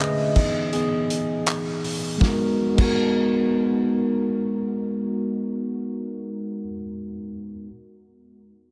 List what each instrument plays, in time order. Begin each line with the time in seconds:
Already playing: tine electric piano D3 A3 C#4 D4 B4 E5
0.00 tine electric piano G#4 D#5, clap
0.36 tine electric piano E3 B3 D#4, kick, crash
0.73 tine electric piano B3 G#4, closed hi-hat
1.10 closed hi-hat
1.46 clap, closed hi-hat
1.84 open hi-hat
2.18 tine electric piano G#3 B3, kick
2.22 tine electric piano D#4 F#4, snare
2.27 tine electric piano A#4
2.75 tine electric piano G#3 B3, kick, crash
2.79 tine electric piano D#4 F#4
2.84 tine electric piano A#4